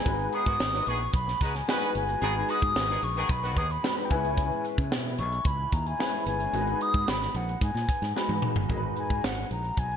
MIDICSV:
0, 0, Header, 1, 6, 480
1, 0, Start_track
1, 0, Key_signature, 5, "minor"
1, 0, Tempo, 539568
1, 54, Time_signature, 4, 2, 24, 8
1, 8867, End_track
2, 0, Start_track
2, 0, Title_t, "Flute"
2, 0, Program_c, 0, 73
2, 0, Note_on_c, 0, 80, 96
2, 306, Note_on_c, 0, 87, 102
2, 320, Note_off_c, 0, 80, 0
2, 786, Note_on_c, 0, 85, 93
2, 799, Note_off_c, 0, 87, 0
2, 1017, Note_off_c, 0, 85, 0
2, 1023, Note_on_c, 0, 83, 93
2, 1265, Note_on_c, 0, 82, 83
2, 1279, Note_off_c, 0, 83, 0
2, 1387, Note_on_c, 0, 80, 93
2, 1401, Note_off_c, 0, 82, 0
2, 1740, Note_off_c, 0, 80, 0
2, 1746, Note_on_c, 0, 80, 91
2, 2226, Note_on_c, 0, 87, 108
2, 2240, Note_off_c, 0, 80, 0
2, 2704, Note_on_c, 0, 85, 102
2, 2717, Note_off_c, 0, 87, 0
2, 2943, Note_on_c, 0, 83, 98
2, 2957, Note_off_c, 0, 85, 0
2, 3181, Note_on_c, 0, 87, 94
2, 3195, Note_off_c, 0, 83, 0
2, 3303, Note_on_c, 0, 83, 89
2, 3317, Note_off_c, 0, 87, 0
2, 3605, Note_on_c, 0, 79, 65
2, 3618, Note_off_c, 0, 83, 0
2, 3661, Note_on_c, 0, 80, 87
2, 3674, Note_off_c, 0, 79, 0
2, 4137, Note_off_c, 0, 80, 0
2, 4619, Note_on_c, 0, 85, 97
2, 4865, Note_on_c, 0, 83, 102
2, 4879, Note_off_c, 0, 85, 0
2, 5103, Note_on_c, 0, 82, 87
2, 5116, Note_off_c, 0, 83, 0
2, 5222, Note_on_c, 0, 80, 98
2, 5236, Note_off_c, 0, 82, 0
2, 5578, Note_off_c, 0, 80, 0
2, 5583, Note_on_c, 0, 80, 97
2, 6066, Note_on_c, 0, 87, 114
2, 6079, Note_off_c, 0, 80, 0
2, 6310, Note_on_c, 0, 83, 102
2, 6323, Note_off_c, 0, 87, 0
2, 6549, Note_on_c, 0, 78, 92
2, 6562, Note_off_c, 0, 83, 0
2, 6782, Note_off_c, 0, 78, 0
2, 6792, Note_on_c, 0, 80, 95
2, 7231, Note_off_c, 0, 80, 0
2, 7994, Note_on_c, 0, 80, 93
2, 8232, Note_on_c, 0, 78, 84
2, 8245, Note_off_c, 0, 80, 0
2, 8464, Note_off_c, 0, 78, 0
2, 8470, Note_on_c, 0, 82, 92
2, 8710, Note_on_c, 0, 80, 104
2, 8723, Note_off_c, 0, 82, 0
2, 8867, Note_off_c, 0, 80, 0
2, 8867, End_track
3, 0, Start_track
3, 0, Title_t, "Grand piano"
3, 0, Program_c, 1, 0
3, 0, Control_c, 1, 64, 127
3, 47, Note_on_c, 1, 56, 75
3, 49, Note_on_c, 1, 59, 65
3, 53, Note_on_c, 1, 63, 63
3, 57, Note_on_c, 1, 66, 73
3, 58, Note_on_c, 1, 71, 85
3, 64, Control_c, 1, 64, 0
3, 233, Control_c, 1, 64, 127
3, 766, Note_off_c, 1, 56, 0
3, 766, Note_off_c, 1, 59, 0
3, 768, Note_off_c, 1, 63, 0
3, 770, Note_off_c, 1, 66, 0
3, 771, Note_off_c, 1, 71, 0
3, 1494, Note_on_c, 1, 56, 77
3, 1494, Note_on_c, 1, 59, 70
3, 1498, Note_on_c, 1, 63, 66
3, 1502, Note_on_c, 1, 66, 71
3, 1504, Note_on_c, 1, 71, 87
3, 1851, Note_off_c, 1, 56, 0
3, 1851, Note_off_c, 1, 59, 0
3, 1853, Note_off_c, 1, 63, 0
3, 1855, Note_off_c, 1, 66, 0
3, 1857, Note_off_c, 1, 71, 0
3, 1970, Note_on_c, 1, 56, 83
3, 1973, Note_on_c, 1, 59, 71
3, 1974, Note_on_c, 1, 63, 69
3, 1978, Note_on_c, 1, 66, 71
3, 1979, Note_on_c, 1, 71, 84
3, 2687, Note_off_c, 1, 56, 0
3, 2688, Note_off_c, 1, 59, 0
3, 2689, Note_off_c, 1, 63, 0
3, 2691, Note_off_c, 1, 66, 0
3, 2691, Note_off_c, 1, 71, 0
3, 3408, Note_on_c, 1, 56, 76
3, 3410, Note_on_c, 1, 59, 80
3, 3413, Note_on_c, 1, 63, 69
3, 3415, Note_on_c, 1, 66, 71
3, 3418, Note_on_c, 1, 71, 93
3, 3633, Note_off_c, 1, 56, 0
3, 3637, Note_off_c, 1, 59, 0
3, 3647, Note_off_c, 1, 71, 0
3, 3647, Note_on_c, 1, 56, 81
3, 3650, Note_on_c, 1, 59, 84
3, 3653, Note_off_c, 1, 63, 0
3, 3654, Note_off_c, 1, 66, 0
3, 3655, Note_on_c, 1, 61, 81
3, 3658, Note_on_c, 1, 64, 83
3, 3661, Note_on_c, 1, 71, 103
3, 3664, Control_c, 1, 64, 0
3, 3803, Control_c, 1, 64, 127
3, 4418, Note_off_c, 1, 56, 0
3, 4420, Note_off_c, 1, 59, 0
3, 4422, Note_off_c, 1, 61, 0
3, 4424, Note_off_c, 1, 64, 0
3, 4425, Note_off_c, 1, 71, 0
3, 5329, Note_on_c, 1, 56, 76
3, 5332, Note_on_c, 1, 59, 70
3, 5335, Note_on_c, 1, 61, 69
3, 5337, Note_on_c, 1, 64, 65
3, 5338, Note_on_c, 1, 71, 95
3, 5689, Note_off_c, 1, 56, 0
3, 5690, Note_off_c, 1, 59, 0
3, 5692, Note_off_c, 1, 61, 0
3, 5693, Note_off_c, 1, 64, 0
3, 5694, Note_off_c, 1, 71, 0
3, 5810, Note_on_c, 1, 56, 76
3, 5815, Note_on_c, 1, 59, 71
3, 5816, Note_on_c, 1, 63, 79
3, 5818, Note_on_c, 1, 66, 71
3, 5822, Note_on_c, 1, 70, 64
3, 5824, Control_c, 1, 64, 0
3, 5875, Note_off_c, 1, 70, 0
3, 5880, Note_on_c, 1, 71, 84
3, 5969, Control_c, 1, 64, 127
3, 6527, Note_off_c, 1, 56, 0
3, 6530, Note_off_c, 1, 59, 0
3, 6531, Note_off_c, 1, 63, 0
3, 6532, Note_off_c, 1, 66, 0
3, 6563, Note_off_c, 1, 71, 0
3, 7254, Note_on_c, 1, 56, 75
3, 7258, Note_on_c, 1, 59, 69
3, 7262, Note_on_c, 1, 63, 71
3, 7263, Note_on_c, 1, 66, 71
3, 7264, Note_on_c, 1, 71, 86
3, 7612, Note_off_c, 1, 56, 0
3, 7614, Note_off_c, 1, 59, 0
3, 7616, Note_off_c, 1, 63, 0
3, 7617, Note_off_c, 1, 66, 0
3, 7617, Note_off_c, 1, 71, 0
3, 7728, Note_on_c, 1, 56, 83
3, 7732, Note_on_c, 1, 63, 75
3, 7736, Note_on_c, 1, 66, 76
3, 7737, Note_on_c, 1, 70, 65
3, 7746, Control_c, 1, 64, 0
3, 7794, Note_off_c, 1, 70, 0
3, 7795, Note_on_c, 1, 71, 93
3, 7888, Control_c, 1, 64, 127
3, 8448, Note_off_c, 1, 56, 0
3, 8450, Note_off_c, 1, 63, 0
3, 8452, Note_off_c, 1, 66, 0
3, 8481, Note_off_c, 1, 71, 0
3, 8867, End_track
4, 0, Start_track
4, 0, Title_t, "Horn section"
4, 0, Program_c, 2, 61
4, 293, Note_on_c, 2, 68, 99
4, 294, Note_on_c, 2, 51, 94
4, 294, Note_on_c, 2, 59, 94
4, 389, Note_off_c, 2, 68, 0
4, 390, Note_off_c, 2, 51, 0
4, 390, Note_off_c, 2, 59, 0
4, 414, Note_on_c, 2, 51, 77
4, 414, Note_on_c, 2, 66, 85
4, 415, Note_on_c, 2, 59, 78
4, 510, Note_off_c, 2, 51, 0
4, 510, Note_off_c, 2, 59, 0
4, 510, Note_off_c, 2, 66, 0
4, 656, Note_on_c, 2, 51, 87
4, 659, Note_on_c, 2, 59, 77
4, 659, Note_on_c, 2, 66, 83
4, 751, Note_off_c, 2, 51, 0
4, 753, Note_off_c, 2, 59, 0
4, 753, Note_off_c, 2, 66, 0
4, 780, Note_on_c, 2, 59, 88
4, 782, Note_on_c, 2, 68, 102
4, 783, Note_on_c, 2, 51, 87
4, 873, Note_off_c, 2, 59, 0
4, 875, Note_off_c, 2, 51, 0
4, 875, Note_off_c, 2, 68, 0
4, 1261, Note_on_c, 2, 56, 80
4, 1262, Note_on_c, 2, 66, 75
4, 1263, Note_on_c, 2, 71, 93
4, 1354, Note_off_c, 2, 56, 0
4, 1355, Note_off_c, 2, 66, 0
4, 1355, Note_off_c, 2, 71, 0
4, 1497, Note_on_c, 2, 66, 113
4, 1499, Note_on_c, 2, 71, 115
4, 1500, Note_on_c, 2, 56, 102
4, 1688, Note_off_c, 2, 66, 0
4, 1689, Note_off_c, 2, 56, 0
4, 1689, Note_off_c, 2, 71, 0
4, 1975, Note_on_c, 2, 68, 127
4, 1976, Note_on_c, 2, 59, 96
4, 1977, Note_on_c, 2, 51, 113
4, 2071, Note_off_c, 2, 59, 0
4, 2071, Note_off_c, 2, 68, 0
4, 2072, Note_off_c, 2, 51, 0
4, 2210, Note_on_c, 2, 56, 90
4, 2211, Note_on_c, 2, 66, 86
4, 2214, Note_on_c, 2, 71, 100
4, 2307, Note_off_c, 2, 56, 0
4, 2308, Note_off_c, 2, 66, 0
4, 2310, Note_off_c, 2, 71, 0
4, 2456, Note_on_c, 2, 66, 85
4, 2458, Note_on_c, 2, 56, 87
4, 2458, Note_on_c, 2, 71, 91
4, 2551, Note_off_c, 2, 66, 0
4, 2552, Note_off_c, 2, 56, 0
4, 2552, Note_off_c, 2, 71, 0
4, 2575, Note_on_c, 2, 51, 86
4, 2579, Note_on_c, 2, 59, 96
4, 2579, Note_on_c, 2, 68, 90
4, 2671, Note_off_c, 2, 51, 0
4, 2673, Note_off_c, 2, 59, 0
4, 2673, Note_off_c, 2, 68, 0
4, 2814, Note_on_c, 2, 51, 103
4, 2816, Note_on_c, 2, 68, 108
4, 2817, Note_on_c, 2, 59, 98
4, 2910, Note_off_c, 2, 51, 0
4, 2911, Note_off_c, 2, 68, 0
4, 2912, Note_off_c, 2, 59, 0
4, 3048, Note_on_c, 2, 66, 108
4, 3051, Note_on_c, 2, 59, 106
4, 3053, Note_on_c, 2, 51, 92
4, 3147, Note_off_c, 2, 66, 0
4, 3148, Note_off_c, 2, 59, 0
4, 3149, Note_off_c, 2, 51, 0
4, 3173, Note_on_c, 2, 51, 82
4, 3173, Note_on_c, 2, 68, 95
4, 3174, Note_on_c, 2, 59, 80
4, 3245, Note_off_c, 2, 51, 0
4, 3245, Note_off_c, 2, 68, 0
4, 3246, Note_off_c, 2, 59, 0
4, 8867, End_track
5, 0, Start_track
5, 0, Title_t, "Fingered electric bass"
5, 0, Program_c, 3, 33
5, 52, Note_on_c, 3, 32, 104
5, 226, Note_off_c, 3, 32, 0
5, 411, Note_on_c, 3, 44, 97
5, 499, Note_off_c, 3, 44, 0
5, 535, Note_on_c, 3, 32, 97
5, 708, Note_off_c, 3, 32, 0
5, 773, Note_on_c, 3, 34, 105
5, 947, Note_off_c, 3, 34, 0
5, 1009, Note_on_c, 3, 35, 87
5, 1184, Note_off_c, 3, 35, 0
5, 1253, Note_on_c, 3, 37, 87
5, 1427, Note_off_c, 3, 37, 0
5, 1736, Note_on_c, 3, 31, 97
5, 1909, Note_off_c, 3, 31, 0
5, 1972, Note_on_c, 3, 32, 108
5, 2146, Note_off_c, 3, 32, 0
5, 2334, Note_on_c, 3, 44, 92
5, 2421, Note_off_c, 3, 44, 0
5, 2453, Note_on_c, 3, 32, 99
5, 2627, Note_off_c, 3, 32, 0
5, 2692, Note_on_c, 3, 34, 91
5, 2866, Note_off_c, 3, 34, 0
5, 2929, Note_on_c, 3, 35, 108
5, 3170, Note_off_c, 3, 35, 0
5, 3170, Note_on_c, 3, 39, 92
5, 3345, Note_off_c, 3, 39, 0
5, 3652, Note_on_c, 3, 37, 92
5, 4000, Note_off_c, 3, 37, 0
5, 4253, Note_on_c, 3, 49, 104
5, 4372, Note_off_c, 3, 49, 0
5, 4372, Note_on_c, 3, 47, 89
5, 4614, Note_on_c, 3, 35, 103
5, 4627, Note_off_c, 3, 47, 0
5, 4787, Note_off_c, 3, 35, 0
5, 4847, Note_on_c, 3, 37, 86
5, 5023, Note_off_c, 3, 37, 0
5, 5093, Note_on_c, 3, 39, 99
5, 5267, Note_off_c, 3, 39, 0
5, 5571, Note_on_c, 3, 31, 91
5, 5746, Note_off_c, 3, 31, 0
5, 5809, Note_on_c, 3, 32, 106
5, 5984, Note_off_c, 3, 32, 0
5, 6175, Note_on_c, 3, 44, 104
5, 6262, Note_off_c, 3, 44, 0
5, 6291, Note_on_c, 3, 32, 93
5, 6466, Note_off_c, 3, 32, 0
5, 6534, Note_on_c, 3, 34, 101
5, 6708, Note_off_c, 3, 34, 0
5, 6772, Note_on_c, 3, 44, 101
5, 6860, Note_off_c, 3, 44, 0
5, 6892, Note_on_c, 3, 46, 92
5, 6980, Note_off_c, 3, 46, 0
5, 7134, Note_on_c, 3, 44, 94
5, 7221, Note_off_c, 3, 44, 0
5, 7371, Note_on_c, 3, 44, 94
5, 7459, Note_off_c, 3, 44, 0
5, 7612, Note_on_c, 3, 31, 84
5, 7700, Note_off_c, 3, 31, 0
5, 7734, Note_on_c, 3, 32, 103
5, 7908, Note_off_c, 3, 32, 0
5, 8096, Note_on_c, 3, 44, 86
5, 8183, Note_off_c, 3, 44, 0
5, 8215, Note_on_c, 3, 32, 85
5, 8389, Note_off_c, 3, 32, 0
5, 8457, Note_on_c, 3, 34, 95
5, 8631, Note_off_c, 3, 34, 0
5, 8695, Note_on_c, 3, 35, 84
5, 8867, Note_off_c, 3, 35, 0
5, 8867, End_track
6, 0, Start_track
6, 0, Title_t, "Drums"
6, 52, Note_on_c, 9, 42, 82
6, 53, Note_on_c, 9, 36, 94
6, 141, Note_off_c, 9, 42, 0
6, 142, Note_off_c, 9, 36, 0
6, 173, Note_on_c, 9, 42, 35
6, 262, Note_off_c, 9, 42, 0
6, 291, Note_on_c, 9, 42, 62
6, 380, Note_off_c, 9, 42, 0
6, 410, Note_on_c, 9, 42, 51
6, 413, Note_on_c, 9, 36, 88
6, 499, Note_off_c, 9, 42, 0
6, 502, Note_off_c, 9, 36, 0
6, 536, Note_on_c, 9, 38, 112
6, 625, Note_off_c, 9, 38, 0
6, 659, Note_on_c, 9, 38, 37
6, 748, Note_off_c, 9, 38, 0
6, 772, Note_on_c, 9, 42, 74
6, 861, Note_off_c, 9, 42, 0
6, 896, Note_on_c, 9, 42, 50
6, 985, Note_off_c, 9, 42, 0
6, 1006, Note_on_c, 9, 42, 90
6, 1010, Note_on_c, 9, 36, 100
6, 1094, Note_off_c, 9, 42, 0
6, 1099, Note_off_c, 9, 36, 0
6, 1138, Note_on_c, 9, 38, 34
6, 1227, Note_off_c, 9, 38, 0
6, 1253, Note_on_c, 9, 42, 94
6, 1254, Note_on_c, 9, 36, 101
6, 1342, Note_off_c, 9, 42, 0
6, 1343, Note_off_c, 9, 36, 0
6, 1376, Note_on_c, 9, 42, 58
6, 1379, Note_on_c, 9, 38, 39
6, 1465, Note_off_c, 9, 42, 0
6, 1468, Note_off_c, 9, 38, 0
6, 1501, Note_on_c, 9, 38, 109
6, 1590, Note_off_c, 9, 38, 0
6, 1735, Note_on_c, 9, 42, 81
6, 1824, Note_off_c, 9, 42, 0
6, 1858, Note_on_c, 9, 42, 56
6, 1947, Note_off_c, 9, 42, 0
6, 1975, Note_on_c, 9, 42, 86
6, 2064, Note_off_c, 9, 42, 0
6, 2212, Note_on_c, 9, 42, 66
6, 2301, Note_off_c, 9, 42, 0
6, 2332, Note_on_c, 9, 42, 55
6, 2333, Note_on_c, 9, 36, 98
6, 2421, Note_off_c, 9, 42, 0
6, 2422, Note_off_c, 9, 36, 0
6, 2457, Note_on_c, 9, 38, 113
6, 2546, Note_off_c, 9, 38, 0
6, 2576, Note_on_c, 9, 42, 32
6, 2583, Note_on_c, 9, 38, 42
6, 2665, Note_off_c, 9, 42, 0
6, 2672, Note_off_c, 9, 38, 0
6, 2692, Note_on_c, 9, 42, 81
6, 2781, Note_off_c, 9, 42, 0
6, 2819, Note_on_c, 9, 42, 52
6, 2908, Note_off_c, 9, 42, 0
6, 2927, Note_on_c, 9, 42, 93
6, 2930, Note_on_c, 9, 36, 105
6, 3016, Note_off_c, 9, 42, 0
6, 3019, Note_off_c, 9, 36, 0
6, 3054, Note_on_c, 9, 42, 34
6, 3058, Note_on_c, 9, 38, 33
6, 3143, Note_off_c, 9, 42, 0
6, 3147, Note_off_c, 9, 38, 0
6, 3171, Note_on_c, 9, 42, 89
6, 3172, Note_on_c, 9, 36, 101
6, 3260, Note_off_c, 9, 42, 0
6, 3261, Note_off_c, 9, 36, 0
6, 3294, Note_on_c, 9, 42, 55
6, 3383, Note_off_c, 9, 42, 0
6, 3418, Note_on_c, 9, 38, 120
6, 3507, Note_off_c, 9, 38, 0
6, 3534, Note_on_c, 9, 42, 37
6, 3623, Note_off_c, 9, 42, 0
6, 3651, Note_on_c, 9, 42, 87
6, 3654, Note_on_c, 9, 36, 96
6, 3740, Note_off_c, 9, 42, 0
6, 3743, Note_off_c, 9, 36, 0
6, 3777, Note_on_c, 9, 42, 53
6, 3866, Note_off_c, 9, 42, 0
6, 3892, Note_on_c, 9, 36, 104
6, 3894, Note_on_c, 9, 42, 76
6, 3981, Note_off_c, 9, 36, 0
6, 3983, Note_off_c, 9, 42, 0
6, 4018, Note_on_c, 9, 42, 34
6, 4107, Note_off_c, 9, 42, 0
6, 4132, Note_on_c, 9, 42, 69
6, 4221, Note_off_c, 9, 42, 0
6, 4251, Note_on_c, 9, 42, 57
6, 4253, Note_on_c, 9, 36, 99
6, 4340, Note_off_c, 9, 42, 0
6, 4342, Note_off_c, 9, 36, 0
6, 4376, Note_on_c, 9, 38, 127
6, 4465, Note_off_c, 9, 38, 0
6, 4492, Note_on_c, 9, 42, 34
6, 4581, Note_off_c, 9, 42, 0
6, 4612, Note_on_c, 9, 42, 84
6, 4701, Note_off_c, 9, 42, 0
6, 4736, Note_on_c, 9, 42, 53
6, 4825, Note_off_c, 9, 42, 0
6, 4845, Note_on_c, 9, 42, 96
6, 4849, Note_on_c, 9, 36, 103
6, 4934, Note_off_c, 9, 42, 0
6, 4938, Note_off_c, 9, 36, 0
6, 5092, Note_on_c, 9, 42, 89
6, 5093, Note_on_c, 9, 36, 92
6, 5181, Note_off_c, 9, 42, 0
6, 5182, Note_off_c, 9, 36, 0
6, 5217, Note_on_c, 9, 42, 53
6, 5306, Note_off_c, 9, 42, 0
6, 5340, Note_on_c, 9, 38, 117
6, 5429, Note_off_c, 9, 38, 0
6, 5455, Note_on_c, 9, 42, 32
6, 5544, Note_off_c, 9, 42, 0
6, 5574, Note_on_c, 9, 42, 89
6, 5663, Note_off_c, 9, 42, 0
6, 5695, Note_on_c, 9, 42, 60
6, 5784, Note_off_c, 9, 42, 0
6, 5815, Note_on_c, 9, 42, 88
6, 5904, Note_off_c, 9, 42, 0
6, 5939, Note_on_c, 9, 42, 34
6, 6028, Note_off_c, 9, 42, 0
6, 6058, Note_on_c, 9, 42, 69
6, 6147, Note_off_c, 9, 42, 0
6, 6175, Note_on_c, 9, 36, 88
6, 6175, Note_on_c, 9, 42, 50
6, 6264, Note_off_c, 9, 36, 0
6, 6264, Note_off_c, 9, 42, 0
6, 6300, Note_on_c, 9, 38, 118
6, 6389, Note_off_c, 9, 38, 0
6, 6424, Note_on_c, 9, 38, 39
6, 6513, Note_off_c, 9, 38, 0
6, 6536, Note_on_c, 9, 42, 78
6, 6625, Note_off_c, 9, 42, 0
6, 6662, Note_on_c, 9, 42, 55
6, 6751, Note_off_c, 9, 42, 0
6, 6773, Note_on_c, 9, 42, 92
6, 6774, Note_on_c, 9, 36, 92
6, 6862, Note_off_c, 9, 36, 0
6, 6862, Note_off_c, 9, 42, 0
6, 6903, Note_on_c, 9, 38, 37
6, 6992, Note_off_c, 9, 38, 0
6, 7016, Note_on_c, 9, 36, 95
6, 7017, Note_on_c, 9, 42, 91
6, 7105, Note_off_c, 9, 36, 0
6, 7106, Note_off_c, 9, 42, 0
6, 7138, Note_on_c, 9, 42, 52
6, 7141, Note_on_c, 9, 38, 35
6, 7227, Note_off_c, 9, 42, 0
6, 7230, Note_off_c, 9, 38, 0
6, 7264, Note_on_c, 9, 38, 62
6, 7353, Note_off_c, 9, 38, 0
6, 7376, Note_on_c, 9, 48, 61
6, 7465, Note_off_c, 9, 48, 0
6, 7493, Note_on_c, 9, 45, 94
6, 7582, Note_off_c, 9, 45, 0
6, 7614, Note_on_c, 9, 43, 105
6, 7703, Note_off_c, 9, 43, 0
6, 7736, Note_on_c, 9, 36, 83
6, 7737, Note_on_c, 9, 42, 80
6, 7825, Note_off_c, 9, 36, 0
6, 7825, Note_off_c, 9, 42, 0
6, 7976, Note_on_c, 9, 42, 59
6, 8065, Note_off_c, 9, 42, 0
6, 8097, Note_on_c, 9, 42, 49
6, 8098, Note_on_c, 9, 36, 85
6, 8186, Note_off_c, 9, 36, 0
6, 8186, Note_off_c, 9, 42, 0
6, 8222, Note_on_c, 9, 38, 106
6, 8311, Note_off_c, 9, 38, 0
6, 8339, Note_on_c, 9, 42, 36
6, 8428, Note_off_c, 9, 42, 0
6, 8459, Note_on_c, 9, 42, 65
6, 8548, Note_off_c, 9, 42, 0
6, 8580, Note_on_c, 9, 42, 48
6, 8669, Note_off_c, 9, 42, 0
6, 8692, Note_on_c, 9, 42, 88
6, 8695, Note_on_c, 9, 36, 95
6, 8781, Note_off_c, 9, 42, 0
6, 8784, Note_off_c, 9, 36, 0
6, 8820, Note_on_c, 9, 42, 28
6, 8867, Note_off_c, 9, 42, 0
6, 8867, End_track
0, 0, End_of_file